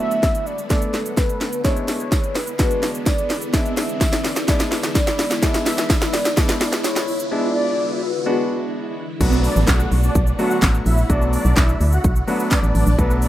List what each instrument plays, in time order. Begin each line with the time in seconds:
Already playing: string machine D3 F#3 A3 B3 F#4, grand piano A3 B3 D4 F#4, riser
0.00 soft synth lead E5
0.11 closed hi-hat, shaker
0.23 kick, snare, closed hi-hat, shaker
0.35 closed hi-hat, shaker
0.46 soft synth lead D5, shaker
0.58 closed hi-hat, shaker
0.70 grand piano A3 B3 D4 A4, soft synth lead D5, kick, snare, closed hi-hat, shaker
0.82 closed hi-hat, shaker
0.94 snare, shaker
1.06 closed hi-hat, shaker
1.17 soft synth lead B4, kick, snare, closed hi-hat, shaker
1.29 closed hi-hat, shaker
1.41 snare, shaker
1.53 closed hi-hat, shaker
1.64 string machine E3 G#3 E4, grand piano G#3 B3 D4 E4, soft synth lead C#5, kick, snare, closed hi-hat, shaker
1.77 closed hi-hat, shaker
1.88 soft synth lead C#5, snare, open hi-hat, shaker
2.00 closed hi-hat, shaker
2.12 kick, snare, closed hi-hat, tambourine, shaker
2.24 closed hi-hat, shaker
2.35 soft synth lead B4, snare, open hi-hat, shaker
2.47 closed hi-hat, shaker
2.59 grand piano G#3 B3 D4 F#4, soft synth lead B4, kick, snare, closed hi-hat, shaker
2.71 closed hi-hat, shaker
2.83 snare, open hi-hat, shaker
2.95 closed hi-hat, shaker
3.06 soft synth lead D5, kick, snare, closed hi-hat, tambourine, shaker
3.18 closed hi-hat, shaker
3.30 snare, open hi-hat, shaker
3.42 closed hi-hat, shaker
3.53 grand piano G#3 B3 D4 E4, soft synth lead E5, kick, snare, closed hi-hat, shaker
3.66 closed hi-hat, shaker
3.77 soft synth lead E5, snare, open hi-hat, shaker
3.89 closed hi-hat, shaker
4.01 kick, snare, closed hi-hat, tambourine, shaker
4.13 snare, closed hi-hat, shaker
4.24 soft synth lead D5, snare, open hi-hat, shaker
4.36 snare, closed hi-hat, shaker
4.48 grand piano G#3 B3 D4 E4, soft synth lead D5, kick, snare, closed hi-hat, shaker
4.60 snare, closed hi-hat, shaker
4.72 snare, open hi-hat, shaker
4.83 snare, closed hi-hat, shaker
4.95 soft synth lead D5, kick, snare, closed hi-hat, tambourine, shaker
5.07 snare, closed hi-hat, shaker
5.19 snare, open hi-hat, shaker
5.31 snare, closed hi-hat, shaker
5.42 grand piano G#3 B3 D4 E4, soft synth lead E5, kick, snare, closed hi-hat, shaker
5.54 snare, closed hi-hat, shaker
5.66 soft synth lead E5, snare, open hi-hat, shaker
5.78 snare, closed hi-hat, shaker
5.90 kick, snare, closed hi-hat, tambourine, shaker
6.02 snare, closed hi-hat, shaker
6.13 soft synth lead D5, snare, open hi-hat, shaker
6.25 snare, closed hi-hat, shaker
6.37 grand piano G#3 B3 D4 E4, soft synth lead D5, kick, snare, closed hi-hat, shaker
6.49 snare, closed hi-hat, shaker
6.61 snare, open hi-hat, shaker
6.73 snare, closed hi-hat, shaker
6.84 soft synth lead C#5, snare, closed hi-hat, tambourine, shaker
6.96 snare, closed hi-hat, shaker
7.08 open hi-hat, shaker
7.20 closed hi-hat, shaker
7.31 grand piano G#3 B3 D4 E4, soft synth lead D5
7.55 soft synth lead D5
8.02 soft synth lead B4
8.26 grand piano G#3 B3 D4 F#4, soft synth lead B4
9.20 fm bass B1, string machine D3 F#3 A3 B3 F#4, grand piano F#3 A3 B3 D4 F#4, supersaw synth B3 B4, kick, closed hi-hat, crash, downlifter, shaker
9.33 shaker
9.44 supersaw synth D4 D5, open hi-hat, shaker
9.56 fm bass A1, shaker
9.67 fm bass B1, supersaw synth F#4 F#5, kick, snare, clap, closed hi-hat, tambourine, shaker
9.80 shaker
9.92 fm bass B1, open hi-hat, shaker
10.03 supersaw synth D4 D5, shaker
10.15 fm bass B1, kick, closed hi-hat, shaker
10.27 shaker
10.39 grand piano F#3 A3 B3 D4 F#4, supersaw synth F#4 F#5, open hi-hat, shaker
10.51 shaker
10.62 fm bass A1, kick, snare, clap, closed hi-hat, tambourine, shaker
10.74 shaker
10.86 fm bass A#1, supersaw synth E4 E5, open hi-hat, shaker
10.98 shaker
11.09 fm bass B1, grand piano F#3 A3 B3 D4 F#4, supersaw synth D4 D5, kick, closed hi-hat, shaker
11.22 shaker
11.33 supersaw synth D4 D5, open hi-hat, shaker
11.45 fm bass B1, shaker
11.56 fm bass B1, supersaw synth E4 E5, kick, snare, clap, closed hi-hat, tambourine, shaker
11.69 shaker
11.81 fm bass D2, open hi-hat, shaker
11.92 supersaw synth F#4 F#5, shaker
12.04 fm bass B1, kick, closed hi-hat, shaker
12.16 shaker
12.27 grand piano F#3 A3 B3 D4 F#4, supersaw synth B3 B4, open hi-hat, shaker
12.40 shaker
12.51 supersaw synth D4 D5, kick, snare, clap, closed hi-hat, tambourine, shaker
12.63 fm bass A1, shaker
12.75 fm bass A1, supersaw synth D4 D5, open hi-hat, shaker
12.87 fm bass A#1, shaker
12.98 fm bass B1, grand piano F#3 A3 B3 D4 A4, supersaw synth B3 B4, string machine E4, kick, closed hi-hat, shaker
13.11 shaker
13.22 supersaw synth D4 D5, open hi-hat, shaker